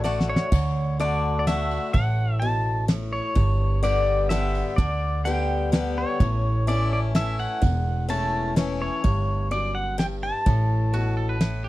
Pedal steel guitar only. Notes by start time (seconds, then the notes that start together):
0.29 C#5
1.01 D5
1.39 D5
1.47 E5
1.93 F#5
2.40 A5
3.13 C#5
3.84 D5
4.29 E5
4.76 D5
5.25 G5
5.98 C#5
6.68 D5
6.93 D5
7.16 E5
7.40 F#5
8.10 A5
8.82 C#5
9.52 D5
9.75 F#5
9.99 G5
10.23 A5